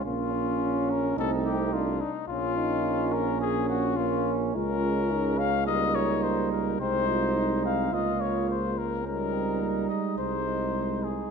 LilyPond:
<<
  \new Staff \with { instrumentName = "Trumpet" } { \time 4/4 \key bes \minor \tempo 4 = 107 f'4. bes'8 a'8 g'8 f'8 ees'8 | f'4. bes'8 aes'8 ges'8 f'8 r8 | \key aes \major bes'4. f''8 ees''8 des''8 c''8 bes'8 | c''4. f''8 ees''8 des''8 c''8 bes'8 |
bes'4. ees''8 c''4. aes'8 | }
  \new Staff \with { instrumentName = "Flugelhorn" } { \time 4/4 \key bes \minor des'2 ees'4. r8 | des'2. des'4 | \key aes \major des'2 ees'2 | ees'2 f'4. r8 |
ees'2 ees'2 | }
  \new Staff \with { instrumentName = "French horn" } { \time 4/4 \key bes \minor des'8 des'4. c'4 d'4 | des'8 ees'4 r8 des'2 | \key aes \major f'4 ees'8 des'8 bes2 | c'8 f'8 ees'8 c'8 bes2 |
des'8 c'8 bes8 aes2 r8 | }
  \new Staff \with { instrumentName = "Euphonium" } { \clef bass \time 4/4 \key bes \minor bes2 a4. r8 | bes2. bes4 | \key aes \major aes2 g2 | aes2 aes4. r8 |
g2 aes2 | }
  \new Staff \with { instrumentName = "Bass trombone" } { \clef bass \time 4/4 \key bes \minor bes,,2 c,4. r8 | bes,,1 | \key aes \major des,1 | c,2 des,2~ |
des,4. r8 c,2 | }
>>